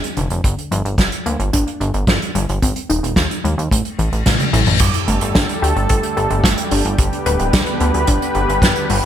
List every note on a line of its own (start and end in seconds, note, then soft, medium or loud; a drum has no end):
0.00 0.16 D4 loud
0.00 closed hi-hat medium
0.17 0.28 F1 loud
0.17 0.31 D3 medium
0.17 closed hi-hat medium
0.30 0.41 F1 medium
0.30 closed hi-hat medium
0.44 0.55 G1 loud
0.44 0.70 D3 medium
0.44 kick loud
0.44 closed hi-hat loud
0.58 closed hi-hat soft
0.71 0.82 G1 loud
0.71 0.97 F3 medium
0.71 closed hi-hat medium
0.85 0.96 G1 medium
0.85 closed hi-hat medium
0.98 1.09 G1 loud
0.98 1.23 G3 medium
0.98 kick loud
0.98 snare loud
0.98 closed hi-hat loud
1.12 closed hi-hat medium
1.26 1.37 D2 medium
1.26 1.52 A#3 loud
1.26 closed hi-hat medium
1.39 1.50 G1 medium
1.39 closed hi-hat medium
1.53 1.65 G1 loud
1.53 1.77 D4 loud
1.53 kick loud
1.53 closed hi-hat loud
1.68 closed hi-hat medium
1.80 1.91 G1 medium
1.80 2.05 D4 medium
1.80 closed hi-hat soft
1.94 2.05 G1 medium
1.94 closed hi-hat medium
2.07 2.18 G1 loud
2.07 2.34 F3 loud
2.07 kick loud
2.07 snare loud
2.07 closed hi-hat medium
2.22 closed hi-hat medium
2.35 2.46 G1 loud
2.35 2.49 G3 medium
2.35 closed hi-hat medium
2.49 2.60 G1 medium
2.49 closed hi-hat medium
2.62 2.73 G#1 loud
2.62 2.88 C4 medium
2.62 kick loud
2.62 closed hi-hat loud
2.76 closed hi-hat medium
2.90 3.01 D#1 loud
2.90 3.14 D#4 loud
2.90 closed hi-hat medium
3.03 3.14 D#1 medium
3.03 closed hi-hat medium
3.16 3.28 D#2 loud
3.16 3.41 D#3 medium
3.16 kick loud
3.16 snare loud
3.16 closed hi-hat medium
3.31 closed hi-hat medium
3.44 3.55 D#2 medium
3.44 3.59 G#3 medium
3.44 closed hi-hat medium
3.58 3.69 D#2 medium
3.58 closed hi-hat medium
3.71 3.82 A1 loud
3.71 3.96 A3 loud
3.71 kick loud
3.71 closed hi-hat loud
3.71 reverse cymbal medium
3.85 closed hi-hat medium
3.99 4.10 A1 medium
3.99 4.23 E3 medium
3.99 closed hi-hat medium
4.12 4.23 A1 medium
4.12 closed hi-hat soft
4.26 4.37 A1 loud
4.26 4.50 A3 medium
4.26 kick loud
4.26 snare loud
4.26 closed hi-hat loud
4.26 high tom medium
4.40 closed hi-hat medium
4.40 high tom medium
4.53 4.64 A1 loud
4.53 4.68 E4 loud
4.53 closed hi-hat medium
4.53 mid tom medium
4.66 4.78 A1 medium
4.66 closed hi-hat medium
4.66 mid tom medium
4.80 4.91 G1 loud
4.80 9.05 D3 medium
4.80 9.05 G3 medium
4.80 5.06 G3 medium
4.80 6.97 A3 medium
4.80 9.05 G4 medium
4.80 6.97 A4 medium
4.80 kick loud
4.80 closed hi-hat loud
4.80 crash loud
4.94 closed hi-hat medium
5.08 5.19 G1 loud
5.08 5.34 A3 medium
5.08 closed hi-hat medium
5.21 5.32 G1 medium
5.21 closed hi-hat medium
5.35 5.46 G1 loud
5.35 5.59 D4 medium
5.35 kick loud
5.35 snare loud
5.35 closed hi-hat loud
5.49 closed hi-hat medium
5.62 5.73 D2 medium
5.62 5.88 G4 loud
5.62 closed hi-hat medium
5.76 5.87 G1 medium
5.76 closed hi-hat medium
5.89 6.01 G1 loud
5.89 6.14 A4 loud
5.89 kick loud
5.89 closed hi-hat loud
6.03 closed hi-hat medium
6.17 6.28 G1 loud
6.17 6.41 A4 medium
6.17 closed hi-hat soft
6.30 6.42 G1 medium
6.30 closed hi-hat soft
6.44 6.55 G1 loud
6.44 6.70 A3 loud
6.44 kick loud
6.44 snare loud
6.44 closed hi-hat loud
6.58 closed hi-hat medium
6.71 6.82 G1 loud
6.71 6.86 D4 medium
6.71 open hi-hat medium
6.85 6.96 G1 medium
6.85 closed hi-hat medium
6.98 7.10 G1 loud
6.98 9.05 B3 medium
6.98 7.25 G4 medium
6.98 9.05 B4 medium
6.98 kick loud
6.98 closed hi-hat medium
7.13 closed hi-hat medium
7.26 7.37 D1 loud
7.26 7.50 B4 loud
7.26 closed hi-hat medium
7.39 7.51 D1 medium
7.39 closed hi-hat medium
7.53 7.64 D2 loud
7.53 7.77 G3 medium
7.53 kick loud
7.53 snare loud
7.53 closed hi-hat loud
7.66 closed hi-hat medium
7.80 7.91 D2 medium
7.80 7.95 B3 medium
7.80 closed hi-hat medium
7.94 8.05 D2 medium
7.94 closed hi-hat medium
8.07 8.19 G1 loud
8.07 8.32 D4 loud
8.07 kick loud
8.07 closed hi-hat loud
8.22 closed hi-hat medium
8.35 8.46 G1 medium
8.35 8.61 G4 medium
8.35 closed hi-hat medium
8.49 8.60 G1 medium
8.49 closed hi-hat medium
8.62 8.73 G1 loud
8.62 8.88 B4 loud
8.62 kick loud
8.62 snare loud
8.62 closed hi-hat loud
8.76 closed hi-hat medium
8.90 9.01 G1 loud
8.90 9.04 G3 medium
8.90 open hi-hat medium